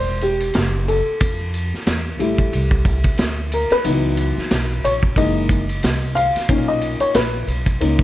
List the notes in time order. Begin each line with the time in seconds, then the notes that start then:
Already playing: E1 C5
0.21 G4, ride
0.40 ride
0.54 F#1, snare, hi-hat pedal, ride
0.88 A4, ride
1.07 muted upright bass stroke
1.20 F2, kick, ride
1.54 ride
1.72 muted upright bass stroke, snare
1.86 E2, snare, hi-hat pedal, ride
2.19 A1 G3 A3 E4, ride
2.38 kick, ride
2.53 C2, ride
2.71 kick
2.85 kick, ride
3.03 muted upright bass stroke, kick, ride
3.17 D2, snare, hi-hat pedal, ride
3.52 A#4, ride
3.70 B4, muted upright bass stroke, snare, ride
3.84 C#2 E3 F#3 B3 D#4, ride
4.17 ride
4.37 muted upright bass stroke, snare
4.51 B1, snare, hi-hat pedal, ride
4.85 A#1 C#5, ride
5.03 kick
5.16 F#1 E3 G#3 A#3 D#4 D#5, kick, ride
5.49 kick, ride
5.69 ride
5.83 C2, snare, hi-hat pedal, ride
6.15 F5, ride
6.35 muted upright bass stroke, snare, ride
6.49 B1 A#2 C#4 D#4, kick, ride
6.68 D#5
6.81 ride
7.00 C#5, muted upright bass stroke, ride
7.14 A#1 B4, snare, hi-hat pedal, ride
7.47 B1, ride
7.66 kick, ride
7.80 C#2 A#3 C#4 D#4, ride
7.99 kick